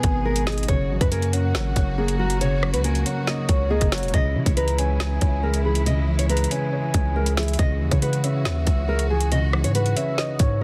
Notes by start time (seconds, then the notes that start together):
Already playing: B2 D#3 G#3 B3 G#4 B4 G#5, downlifter
0.03 G#1 B3, kick, closed hi-hat
0.25 G#3 A#4
0.36 closed hi-hat
0.47 G#4 D#5, snare, closed hi-hat, open hi-hat
0.52 closed hi-hat
0.58 closed hi-hat
0.63 closed hi-hat
0.68 F#1 C#3 F#3 A#3 F#4 C#5, kick, closed hi-hat
0.90 G#1 F#3
1.01 F#2 B4, kick, closed hi-hat
1.11 A#3 A#4 G#5, closed hi-hat
1.22 closed hi-hat
1.33 C#4 F#5, closed hi-hat
1.55 G#1 C#5, snare
1.76 F#1 C#4, kick, closed hi-hat
1.98 A#3 G#4
2.08 closed hi-hat
2.19 F#3 F#4 A#5
2.30 closed hi-hat
2.41 C#3 C#5, closed hi-hat
2.63 F#3, cross-stick
2.73 C#2 B4, closed hi-hat
2.84 A#3 A#4 G#5, closed hi-hat
2.95 closed hi-hat
3.06 C#4 F#5, closed hi-hat
3.27 C#5 D#5, snare
3.49 C#2 C#4 C#5, kick, closed hi-hat
3.70 A#3 G#4 D#5
3.81 F#1, kick, closed hi-hat
3.92 F#3 F#4 C#5, snare, closed hi-hat
3.98 closed hi-hat
4.03 E1, closed hi-hat
4.08 closed hi-hat
4.14 C#2 C#3 E3 G#3 E4 D#5, kick, closed hi-hat
4.35 C#3 E3
4.46 C#2 C#5, kick, closed hi-hat
4.57 G#3 B4 A#5, closed hi-hat
4.68 closed hi-hat
4.78 C#4 G#5, closed hi-hat
5.00 snare
5.21 C#2 C#4, kick, closed hi-hat
5.43 G#3 A#4
5.54 closed hi-hat
5.65 E3 G#4 B5
5.75 closed hi-hat
5.86 C#3 D#5, closed hi-hat
6.08 E3
6.19 C#5, closed hi-hat
6.29 G#3 B4 A#5, closed hi-hat
6.37 closed hi-hat
6.44 closed hi-hat
6.51 C#4 G#5, closed hi-hat
6.73 C#5
6.94 C#2 C#4, kick, closed hi-hat
7.16 G#3 A#4
7.26 closed hi-hat
7.37 E3 G#4 E5, snare, closed hi-hat, open hi-hat
7.43 closed hi-hat
7.48 closed hi-hat
7.54 closed hi-hat
7.59 C#2 C#3 F#4 D#5, kick, closed hi-hat
7.81 D#2 E3
7.91 C#3 C#5, kick, closed hi-hat
8.02 G#3 B4 F#5, closed hi-hat
8.13 closed hi-hat
8.24 C#4 E5, closed hi-hat
8.45 D#2 C#5, snare
8.67 C#2 C#4, kick, closed hi-hat
8.89 G#3 A#4
8.99 closed hi-hat
9.10 E3 G#4 G#5
9.21 closed hi-hat
9.32 C#3 D#5, closed hi-hat
9.53 E3, cross-stick
9.64 G#2 C#5, closed hi-hat
9.75 G#3 B4 F#5, closed hi-hat
9.86 closed hi-hat
9.96 C#4 E5, closed hi-hat
10.18 C#5 D#5, snare
10.39 G#2 C#4 C#5, kick, closed hi-hat